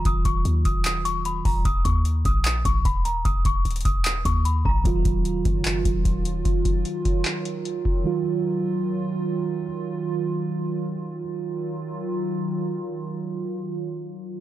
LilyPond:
<<
  \new Staff \with { instrumentName = "Celesta" } { \time 4/4 \key ees \minor \tempo 4 = 150 ees'''8 des'''8 r8 ees'''8 ees'''8 des'''8 ces'''8 bes''8 | ees'''8 des'''8 r8 ees'''8 ees'''8 des'''8 ces'''8 bes''8 | ees'''8 des'''8 r8 ees'''8 ees'''8 des'''8 ces'''8 bes''8 | r1 |
r1 | r1 | r1 | r1 |
r1 | }
  \new Staff \with { instrumentName = "Analog synth pad" } { \clef bass \time 4/4 \key ees \minor << { r1 | r1 | r1 | f'1~ |
f'1 | f'1~ | f'1 | <ees ges f'>1~ |
<ees ges f'>1 | } \\ { r1 | r1 | r1 | <ees ges>1~ |
<ees ges>1~ | <ees ges>1~ | <ees ges>1 | r1 |
r1 | } >> }
  \new Staff \with { instrumentName = "Tine electric piano" } { \clef bass \time 4/4 \key ees \minor <ees ges f'>1 | r1 | r1 | <ees ges f'>1~ |
<ees ges f'>1 | <ees ges f'>1~ | <ees ges f'>1 | r1 |
r1 | }
  \new Staff \with { instrumentName = "808-style bass" } { \clef bass \time 4/4 \key ees \minor ees,,8 ees,,8 ees,8 ees,,2 ees,,8 | ees,,8 ees,4 bes,,4 bes,,8 ees,,4 | ees,,8 ees,,8 ees,,8 ees,,4 ees,4 bes,,8 | ees,,8 ees,,4 ges,,4 ees,,8 ees,,4 |
r1 | r1 | r1 | r1 |
r1 | }
  \new DrumStaff \with { instrumentName = "Drums" } \drummode { \time 4/4 <hh bd>8 <hh bd>8 hh8 <hh bd>8 <hc hh>8 hh8 hh8 <hho bd>8 | <hh bd>8 <hh bd>8 hh8 <hh bd>8 <hc hh>8 <hh bd>8 <hh bd>8 hh8 | <hh bd>8 <hh bd>8 hh32 hh32 hh32 hh32 <hh bd>8 <hc hh>8 <hh bd>8 hh8 bd8 | <hh bd>8 <hh bd>8 hh8 <hh bd>8 <hc hh>8 <hh bd>8 <hh bd>8 hh8 |
<hh bd>8 <hh bd>8 hh8 <hh bd>8 <hc hh>8 hh8 hh8 bd8 | r4 r4 r4 r4 | r4 r4 r4 r4 | r4 r4 r4 r4 |
r4 r4 r4 r4 | }
>>